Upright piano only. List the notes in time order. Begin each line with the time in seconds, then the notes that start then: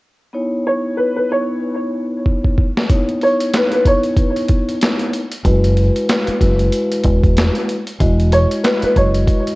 0.67 C#5
0.97 B4
1.16 B4
1.32 C#5
3.23 C#5
3.55 B4
3.73 B4
3.87 C#5
8.33 C#5
8.64 B4
8.84 B4
8.97 C#5